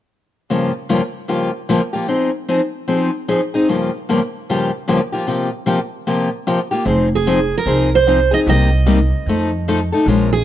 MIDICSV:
0, 0, Header, 1, 4, 480
1, 0, Start_track
1, 0, Key_signature, -4, "minor"
1, 0, Tempo, 399202
1, 587, Time_signature, 4, 2, 24, 8
1, 12557, End_track
2, 0, Start_track
2, 0, Title_t, "Steel-string acoustic guitar"
2, 0, Program_c, 0, 25
2, 8601, Note_on_c, 0, 68, 64
2, 9076, Note_off_c, 0, 68, 0
2, 9109, Note_on_c, 0, 70, 72
2, 9525, Note_off_c, 0, 70, 0
2, 9561, Note_on_c, 0, 72, 77
2, 9990, Note_off_c, 0, 72, 0
2, 10025, Note_on_c, 0, 75, 80
2, 10085, Note_off_c, 0, 75, 0
2, 10212, Note_on_c, 0, 75, 78
2, 11891, Note_off_c, 0, 75, 0
2, 12416, Note_on_c, 0, 68, 79
2, 12557, Note_off_c, 0, 68, 0
2, 12557, End_track
3, 0, Start_track
3, 0, Title_t, "Steel-string acoustic guitar"
3, 0, Program_c, 1, 25
3, 601, Note_on_c, 1, 58, 46
3, 603, Note_on_c, 1, 43, 44
3, 603, Note_on_c, 1, 53, 51
3, 607, Note_on_c, 1, 49, 52
3, 609, Note_on_c, 1, 65, 48
3, 610, Note_on_c, 1, 67, 57
3, 848, Note_off_c, 1, 58, 0
3, 849, Note_off_c, 1, 43, 0
3, 849, Note_off_c, 1, 53, 0
3, 851, Note_off_c, 1, 49, 0
3, 852, Note_off_c, 1, 65, 0
3, 853, Note_off_c, 1, 67, 0
3, 1073, Note_on_c, 1, 53, 63
3, 1075, Note_on_c, 1, 43, 60
3, 1078, Note_on_c, 1, 49, 71
3, 1079, Note_on_c, 1, 65, 71
3, 1083, Note_on_c, 1, 58, 72
3, 1085, Note_on_c, 1, 67, 71
3, 1204, Note_off_c, 1, 53, 0
3, 1205, Note_off_c, 1, 43, 0
3, 1207, Note_off_c, 1, 49, 0
3, 1207, Note_off_c, 1, 65, 0
3, 1209, Note_off_c, 1, 58, 0
3, 1210, Note_off_c, 1, 67, 0
3, 1541, Note_on_c, 1, 43, 45
3, 1545, Note_on_c, 1, 49, 44
3, 1546, Note_on_c, 1, 53, 62
3, 1548, Note_on_c, 1, 58, 57
3, 1551, Note_on_c, 1, 67, 55
3, 1552, Note_on_c, 1, 65, 58
3, 1797, Note_off_c, 1, 43, 0
3, 1800, Note_off_c, 1, 49, 0
3, 1800, Note_off_c, 1, 53, 0
3, 1801, Note_off_c, 1, 58, 0
3, 1803, Note_off_c, 1, 65, 0
3, 1803, Note_off_c, 1, 67, 0
3, 2030, Note_on_c, 1, 49, 69
3, 2032, Note_on_c, 1, 43, 65
3, 2032, Note_on_c, 1, 53, 75
3, 2039, Note_on_c, 1, 67, 71
3, 2042, Note_on_c, 1, 58, 67
3, 2043, Note_on_c, 1, 65, 70
3, 2163, Note_off_c, 1, 43, 0
3, 2163, Note_off_c, 1, 49, 0
3, 2163, Note_off_c, 1, 53, 0
3, 2167, Note_off_c, 1, 67, 0
3, 2168, Note_off_c, 1, 58, 0
3, 2169, Note_off_c, 1, 65, 0
3, 2320, Note_on_c, 1, 67, 49
3, 2326, Note_on_c, 1, 65, 42
3, 2343, Note_on_c, 1, 58, 43
3, 2345, Note_on_c, 1, 53, 36
3, 2485, Note_off_c, 1, 53, 0
3, 2497, Note_off_c, 1, 67, 0
3, 2499, Note_off_c, 1, 65, 0
3, 2500, Note_on_c, 1, 53, 42
3, 2504, Note_off_c, 1, 58, 0
3, 2507, Note_on_c, 1, 63, 52
3, 2509, Note_on_c, 1, 60, 51
3, 2511, Note_on_c, 1, 68, 59
3, 2756, Note_off_c, 1, 53, 0
3, 2760, Note_off_c, 1, 63, 0
3, 2761, Note_off_c, 1, 60, 0
3, 2762, Note_off_c, 1, 68, 0
3, 2988, Note_on_c, 1, 63, 69
3, 2989, Note_on_c, 1, 60, 73
3, 2993, Note_on_c, 1, 53, 64
3, 3004, Note_on_c, 1, 68, 78
3, 3121, Note_off_c, 1, 60, 0
3, 3121, Note_off_c, 1, 63, 0
3, 3123, Note_off_c, 1, 53, 0
3, 3129, Note_off_c, 1, 68, 0
3, 3459, Note_on_c, 1, 53, 58
3, 3464, Note_on_c, 1, 60, 51
3, 3473, Note_on_c, 1, 63, 57
3, 3473, Note_on_c, 1, 68, 60
3, 3716, Note_off_c, 1, 53, 0
3, 3718, Note_off_c, 1, 60, 0
3, 3723, Note_off_c, 1, 63, 0
3, 3723, Note_off_c, 1, 68, 0
3, 3949, Note_on_c, 1, 53, 68
3, 3950, Note_on_c, 1, 60, 65
3, 3951, Note_on_c, 1, 63, 78
3, 3952, Note_on_c, 1, 68, 79
3, 4081, Note_off_c, 1, 53, 0
3, 4082, Note_off_c, 1, 60, 0
3, 4082, Note_off_c, 1, 63, 0
3, 4083, Note_off_c, 1, 68, 0
3, 4255, Note_on_c, 1, 68, 49
3, 4267, Note_on_c, 1, 63, 47
3, 4274, Note_on_c, 1, 60, 40
3, 4424, Note_off_c, 1, 68, 0
3, 4429, Note_off_c, 1, 63, 0
3, 4431, Note_on_c, 1, 49, 54
3, 4432, Note_on_c, 1, 43, 47
3, 4433, Note_off_c, 1, 60, 0
3, 4437, Note_on_c, 1, 53, 48
3, 4439, Note_on_c, 1, 58, 51
3, 4444, Note_on_c, 1, 65, 53
3, 4448, Note_on_c, 1, 67, 53
3, 4682, Note_off_c, 1, 43, 0
3, 4682, Note_off_c, 1, 49, 0
3, 4684, Note_off_c, 1, 53, 0
3, 4686, Note_off_c, 1, 58, 0
3, 4688, Note_off_c, 1, 65, 0
3, 4690, Note_off_c, 1, 67, 0
3, 4916, Note_on_c, 1, 43, 63
3, 4922, Note_on_c, 1, 53, 67
3, 4923, Note_on_c, 1, 49, 72
3, 4923, Note_on_c, 1, 65, 73
3, 4926, Note_on_c, 1, 58, 77
3, 4929, Note_on_c, 1, 67, 73
3, 5044, Note_off_c, 1, 43, 0
3, 5047, Note_off_c, 1, 53, 0
3, 5048, Note_off_c, 1, 49, 0
3, 5048, Note_off_c, 1, 65, 0
3, 5049, Note_off_c, 1, 58, 0
3, 5051, Note_off_c, 1, 67, 0
3, 5405, Note_on_c, 1, 49, 53
3, 5407, Note_on_c, 1, 43, 54
3, 5408, Note_on_c, 1, 65, 52
3, 5410, Note_on_c, 1, 53, 52
3, 5410, Note_on_c, 1, 58, 60
3, 5419, Note_on_c, 1, 67, 61
3, 5649, Note_off_c, 1, 43, 0
3, 5649, Note_off_c, 1, 49, 0
3, 5650, Note_off_c, 1, 65, 0
3, 5651, Note_off_c, 1, 53, 0
3, 5651, Note_off_c, 1, 58, 0
3, 5655, Note_off_c, 1, 67, 0
3, 5864, Note_on_c, 1, 49, 72
3, 5870, Note_on_c, 1, 53, 70
3, 5872, Note_on_c, 1, 43, 69
3, 5877, Note_on_c, 1, 67, 74
3, 5878, Note_on_c, 1, 58, 65
3, 5881, Note_on_c, 1, 65, 72
3, 5998, Note_off_c, 1, 49, 0
3, 6001, Note_off_c, 1, 53, 0
3, 6002, Note_off_c, 1, 43, 0
3, 6005, Note_off_c, 1, 67, 0
3, 6006, Note_off_c, 1, 58, 0
3, 6007, Note_off_c, 1, 65, 0
3, 6161, Note_on_c, 1, 67, 42
3, 6174, Note_on_c, 1, 65, 48
3, 6181, Note_on_c, 1, 58, 43
3, 6189, Note_on_c, 1, 53, 34
3, 6325, Note_off_c, 1, 58, 0
3, 6329, Note_off_c, 1, 65, 0
3, 6330, Note_off_c, 1, 53, 0
3, 6334, Note_off_c, 1, 67, 0
3, 6338, Note_on_c, 1, 48, 47
3, 6340, Note_on_c, 1, 58, 44
3, 6343, Note_on_c, 1, 65, 51
3, 6344, Note_on_c, 1, 53, 50
3, 6348, Note_on_c, 1, 67, 53
3, 6595, Note_off_c, 1, 48, 0
3, 6596, Note_off_c, 1, 58, 0
3, 6598, Note_off_c, 1, 53, 0
3, 6598, Note_off_c, 1, 65, 0
3, 6600, Note_off_c, 1, 67, 0
3, 6805, Note_on_c, 1, 48, 71
3, 6808, Note_on_c, 1, 53, 67
3, 6817, Note_on_c, 1, 58, 67
3, 6817, Note_on_c, 1, 65, 73
3, 6821, Note_on_c, 1, 67, 72
3, 6949, Note_off_c, 1, 48, 0
3, 6951, Note_off_c, 1, 53, 0
3, 6955, Note_off_c, 1, 58, 0
3, 6955, Note_off_c, 1, 65, 0
3, 6957, Note_off_c, 1, 67, 0
3, 7297, Note_on_c, 1, 53, 53
3, 7298, Note_on_c, 1, 48, 55
3, 7299, Note_on_c, 1, 65, 55
3, 7303, Note_on_c, 1, 58, 51
3, 7305, Note_on_c, 1, 67, 64
3, 7555, Note_off_c, 1, 48, 0
3, 7555, Note_off_c, 1, 53, 0
3, 7556, Note_off_c, 1, 65, 0
3, 7558, Note_off_c, 1, 58, 0
3, 7559, Note_off_c, 1, 67, 0
3, 7778, Note_on_c, 1, 48, 71
3, 7779, Note_on_c, 1, 58, 66
3, 7779, Note_on_c, 1, 65, 71
3, 7783, Note_on_c, 1, 53, 71
3, 7787, Note_on_c, 1, 67, 68
3, 7916, Note_off_c, 1, 48, 0
3, 7916, Note_off_c, 1, 58, 0
3, 7916, Note_off_c, 1, 65, 0
3, 7918, Note_off_c, 1, 53, 0
3, 7920, Note_off_c, 1, 67, 0
3, 8068, Note_on_c, 1, 67, 49
3, 8080, Note_on_c, 1, 65, 39
3, 8093, Note_on_c, 1, 58, 35
3, 8235, Note_off_c, 1, 58, 0
3, 8236, Note_on_c, 1, 53, 47
3, 8240, Note_on_c, 1, 60, 53
3, 8242, Note_off_c, 1, 65, 0
3, 8247, Note_on_c, 1, 63, 47
3, 8249, Note_off_c, 1, 67, 0
3, 8254, Note_on_c, 1, 68, 58
3, 8505, Note_off_c, 1, 53, 0
3, 8506, Note_off_c, 1, 60, 0
3, 8510, Note_off_c, 1, 63, 0
3, 8513, Note_off_c, 1, 68, 0
3, 8741, Note_on_c, 1, 53, 61
3, 8744, Note_on_c, 1, 60, 74
3, 8746, Note_on_c, 1, 63, 81
3, 8756, Note_on_c, 1, 68, 78
3, 8878, Note_off_c, 1, 53, 0
3, 8879, Note_off_c, 1, 60, 0
3, 8880, Note_off_c, 1, 63, 0
3, 8885, Note_off_c, 1, 68, 0
3, 9216, Note_on_c, 1, 53, 50
3, 9216, Note_on_c, 1, 60, 55
3, 9221, Note_on_c, 1, 63, 59
3, 9227, Note_on_c, 1, 68, 65
3, 9475, Note_off_c, 1, 53, 0
3, 9475, Note_off_c, 1, 60, 0
3, 9478, Note_off_c, 1, 63, 0
3, 9481, Note_off_c, 1, 68, 0
3, 9703, Note_on_c, 1, 53, 64
3, 9705, Note_on_c, 1, 60, 69
3, 9708, Note_on_c, 1, 63, 73
3, 9719, Note_on_c, 1, 68, 82
3, 9839, Note_off_c, 1, 53, 0
3, 9840, Note_off_c, 1, 60, 0
3, 9842, Note_off_c, 1, 63, 0
3, 9847, Note_off_c, 1, 68, 0
3, 9993, Note_on_c, 1, 68, 52
3, 10003, Note_on_c, 1, 63, 45
3, 10010, Note_on_c, 1, 60, 37
3, 10174, Note_off_c, 1, 68, 0
3, 10179, Note_off_c, 1, 63, 0
3, 10182, Note_off_c, 1, 60, 0
3, 10185, Note_on_c, 1, 48, 49
3, 10189, Note_on_c, 1, 55, 53
3, 10191, Note_on_c, 1, 63, 51
3, 10192, Note_on_c, 1, 58, 53
3, 10205, Note_on_c, 1, 67, 64
3, 10440, Note_off_c, 1, 48, 0
3, 10442, Note_off_c, 1, 55, 0
3, 10444, Note_off_c, 1, 58, 0
3, 10444, Note_off_c, 1, 63, 0
3, 10450, Note_off_c, 1, 67, 0
3, 10656, Note_on_c, 1, 48, 76
3, 10660, Note_on_c, 1, 55, 76
3, 10664, Note_on_c, 1, 58, 79
3, 10664, Note_on_c, 1, 63, 74
3, 10667, Note_on_c, 1, 67, 79
3, 10797, Note_off_c, 1, 48, 0
3, 10798, Note_off_c, 1, 55, 0
3, 10800, Note_off_c, 1, 58, 0
3, 10800, Note_off_c, 1, 63, 0
3, 10802, Note_off_c, 1, 67, 0
3, 11164, Note_on_c, 1, 53, 51
3, 11171, Note_on_c, 1, 57, 58
3, 11174, Note_on_c, 1, 63, 66
3, 11179, Note_on_c, 1, 69, 66
3, 11411, Note_off_c, 1, 53, 0
3, 11414, Note_off_c, 1, 57, 0
3, 11416, Note_off_c, 1, 63, 0
3, 11418, Note_off_c, 1, 69, 0
3, 11638, Note_on_c, 1, 53, 66
3, 11644, Note_on_c, 1, 63, 81
3, 11647, Note_on_c, 1, 69, 88
3, 11648, Note_on_c, 1, 57, 80
3, 11768, Note_off_c, 1, 53, 0
3, 11771, Note_off_c, 1, 63, 0
3, 11772, Note_off_c, 1, 69, 0
3, 11773, Note_off_c, 1, 57, 0
3, 11933, Note_on_c, 1, 69, 52
3, 11950, Note_on_c, 1, 63, 42
3, 11960, Note_on_c, 1, 57, 40
3, 12106, Note_off_c, 1, 69, 0
3, 12114, Note_off_c, 1, 63, 0
3, 12115, Note_off_c, 1, 57, 0
3, 12115, Note_on_c, 1, 53, 53
3, 12120, Note_on_c, 1, 61, 55
3, 12120, Note_on_c, 1, 65, 54
3, 12122, Note_on_c, 1, 56, 53
3, 12123, Note_on_c, 1, 70, 55
3, 12367, Note_off_c, 1, 53, 0
3, 12369, Note_off_c, 1, 61, 0
3, 12370, Note_off_c, 1, 65, 0
3, 12371, Note_off_c, 1, 56, 0
3, 12371, Note_off_c, 1, 70, 0
3, 12557, End_track
4, 0, Start_track
4, 0, Title_t, "Upright bass"
4, 0, Program_c, 2, 32
4, 8246, Note_on_c, 2, 29, 80
4, 9022, Note_off_c, 2, 29, 0
4, 9208, Note_on_c, 2, 36, 71
4, 9984, Note_off_c, 2, 36, 0
4, 10179, Note_on_c, 2, 36, 84
4, 10951, Note_off_c, 2, 36, 0
4, 11137, Note_on_c, 2, 41, 70
4, 11911, Note_off_c, 2, 41, 0
4, 12097, Note_on_c, 2, 34, 82
4, 12557, Note_off_c, 2, 34, 0
4, 12557, End_track
0, 0, End_of_file